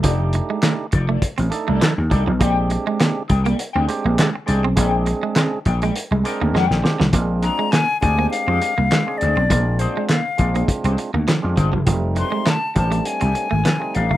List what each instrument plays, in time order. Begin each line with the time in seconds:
0.03 slap bass F1, clean electric guitar F3 D#4 A4 D5, tonewheel organ A3 D4 D#4 G4, kick, closed hi-hat
0.33 muted clean electric guitar stroke, closed hi-hat
0.50 clean electric guitar G#3, muted clean electric guitar stroke
0.63 clean electric guitar A3, muted clean electric guitar stroke, snare, clap, closed hi-hat
0.80 muted clean electric guitar stroke
0.92 slap bass F1, clean electric guitar D#4 A4 D5, muted clean electric guitar stroke, kick, closed hi-hat
1.08 clean electric guitar A3 D#4 A4 D5
1.22 muted clean electric guitar stroke, kick, closed hi-hat
1.38 slap bass A1, clean electric guitar C4, muted clean electric guitar stroke, closed hi-hat
1.50 tonewheel organ A3 D4 D#4 A4, muted clean electric guitar stroke, closed hi-hat
1.68 slap bass C2, clean electric guitar A3 D#4 A4 D5
1.81 clean electric guitar F3, muted clean electric guitar stroke, snare, clap, closed hi-hat
1.98 slap bass D#2, muted clean electric guitar stroke
2.10 slap bass C2, tonewheel organ A3 D4 D#4 G4, clean electric guitar D#4 A4 D5, muted clean electric guitar stroke, kick, closed hi-hat
2.26 slap bass B1, clean electric guitar F3, muted clean electric guitar stroke
2.39 slap bass A#1, tonewheel organ G#3 C4 D4 G4, clean electric guitar A#3 G#4 D5 G5, kick, closed hi-hat
2.70 muted clean electric guitar stroke, closed hi-hat
2.85 clean electric guitar G#3, muted clean electric guitar stroke
3.00 clean electric guitar A#3, muted clean electric guitar stroke, snare, clap, closed hi-hat
3.15 muted clean electric guitar stroke
3.28 slap bass C2, clean electric guitar G#4 D5 G5, muted clean electric guitar stroke, kick, closed hi-hat
3.44 clean electric guitar A#3 G#4 D5 G5, closed hi-hat
3.58 muted clean electric guitar stroke, closed hi-hat
3.73 slap bass D2, clean electric guitar C4 G#4 D5 G5
3.87 tonewheel organ G#3 C4 D4 G4, muted clean electric guitar stroke, closed hi-hat
4.03 slap bass A#1, clean electric guitar A#3, muted clean electric guitar stroke
4.18 clean electric guitar G#3, muted clean electric guitar stroke, snare, clap, closed hi-hat
4.33 muted clean electric guitar stroke
4.46 slap bass C2, tonewheel organ G#3 C4 D4 G#4, clean electric guitar G#4 D5 G5, closed hi-hat
4.63 slap bass B1, clean electric guitar C4, muted clean electric guitar stroke
4.76 slap bass A#1, tonewheel organ G#3 C4 D4 G#4, clean electric guitar A#3 G#4 D5 G5, kick, closed hi-hat
5.06 muted clean electric guitar stroke, closed hi-hat
5.23 clean electric guitar G#3, muted clean electric guitar stroke
5.36 clean electric guitar C4, muted clean electric guitar stroke, snare, clap, closed hi-hat
5.51 muted clean electric guitar stroke
5.65 slap bass A#1, clean electric guitar G#4 D5 G5, muted clean electric guitar stroke, kick, closed hi-hat
5.82 clean electric guitar G#3 G#4 D5 G5, closed hi-hat
5.96 muted clean electric guitar stroke, closed hi-hat
6.11 slap bass C2, clean electric guitar G#3, muted clean electric guitar stroke
6.24 tonewheel organ G#3 C4 D4 A#4, clean electric guitar G#4 D5 G5, muted clean electric guitar stroke, closed hi-hat
6.40 slap bass D2, clean electric guitar A#3, muted clean electric guitar stroke
6.53 slap bass F2, clean electric guitar G#3 G4 C#5 F#5, snare
6.65 clean electric guitar G#4 D5 G5
6.70 slap bass A#1, snare
6.83 tonewheel organ G#3 C4 D4 G4, muted clean electric guitar stroke, snare
6.98 slap bass C2, clean electric guitar F3, muted clean electric guitar stroke, snare
7.12 slap bass A#1, tonewheel organ G#3 C4 D4 F4, clean electric guitar A#3, kick, closed hi-hat
7.42 clean electric guitar D4 G#4 D5, flute A#5, muted clean electric guitar stroke, closed hi-hat
7.59 clean electric guitar G#3
7.72 clean electric guitar A#3, flute G#5, snare, clap, closed hi-hat
7.88 muted clean electric guitar stroke
8.01 slap bass D2, tonewheel organ G#3 C4 D4 G4, clean electric guitar D4 G#4 D5, flute G#5, muted clean electric guitar stroke, kick, closed hi-hat
8.18 clean electric guitar A#3 D4 G#4 C5
8.31 flute F5, muted clean electric guitar stroke, closed hi-hat
8.47 slap bass F2, clean electric guitar C4 D4 G#4 C5
8.62 muted clean electric guitar stroke, closed hi-hat
8.78 slap bass C2, clean electric guitar A#3
8.91 clean electric guitar G#3, muted clean electric guitar stroke, snare, clap, closed hi-hat
9.06 tonewheel organ G#3 C4 D4 G#4, muted clean electric guitar stroke
9.18 clean electric guitar D4 G#4, flute D5, closed hi-hat
9.22 slap bass D2, clean electric guitar C5
9.36 slap bass B1, clean electric guitar C4, muted clean electric guitar stroke
9.49 slap bass A#1, tonewheel organ G#3 C4 D4 F4, clean electric guitar A#3, kick, closed hi-hat
9.79 clean electric guitar D4 G#4 D5, flute C5, muted clean electric guitar stroke, closed hi-hat
9.97 clean electric guitar G#3
10.08 clean electric guitar A#3, flute F5, muted clean electric guitar stroke, snare, clap, closed hi-hat
10.25 muted clean electric guitar stroke
10.38 slap bass A#1, tonewheel organ G#3 C4 D4 F4, clean electric guitar D4 G#4 D5, muted clean electric guitar stroke, kick, closed hi-hat
10.54 clean electric guitar A#3 D4 G#4 C5, closed hi-hat
10.67 muted clean electric guitar stroke, kick, closed hi-hat
10.83 slap bass C2, clean electric guitar C4 D4 G#4 C5, closed hi-hat
10.97 muted clean electric guitar stroke, closed hi-hat
11.14 slap bass D2, clean electric guitar A#3
11.27 clean electric guitar F3, muted clean electric guitar stroke, snare, clap, closed hi-hat
11.42 slap bass F2, tonewheel organ G#3 C4 D4 F4, muted clean electric guitar stroke
11.56 slap bass G1, clean electric guitar D4 G#4 C5, muted clean electric guitar stroke, kick, closed hi-hat
11.72 slap bass F#1, clean electric guitar F3, muted clean electric guitar stroke
11.86 slap bass F1, clean electric guitar F3, tonewheel organ G3 A3 C4 D#4, kick, closed hi-hat
12.16 clean electric guitar D#4 G4 C5, flute C6, muted clean electric guitar stroke, closed hi-hat
12.32 clean electric guitar G#3
12.46 clean electric guitar A3, flute A5, snare, clap, closed hi-hat
12.62 muted clean electric guitar stroke
12.75 slap bass A1, tonewheel organ G3 A3 C4 D4, clean electric guitar D#4 G4 C5, flute A5, muted clean electric guitar stroke, kick, closed hi-hat
12.91 clean electric guitar A3 D#4 G4 A4, closed hi-hat
13.05 flute G#5, muted clean electric guitar stroke, closed hi-hat
13.21 slap bass C2, clean electric guitar C4 D#4 G4 A4, closed hi-hat
13.35 muted clean electric guitar stroke, closed hi-hat
13.51 slap bass G#1, clean electric guitar A3, muted clean electric guitar stroke
13.65 clean electric guitar F3, muted clean electric guitar stroke, snare, clap, closed hi-hat
13.79 tonewheel organ G3 A3 C4 D#4, muted clean electric guitar stroke
13.94 slap bass A1, clean electric guitar D#4 G4 A4, flute F5, closed hi-hat
14.09 slap bass F#1, clean electric guitar A3, muted clean electric guitar stroke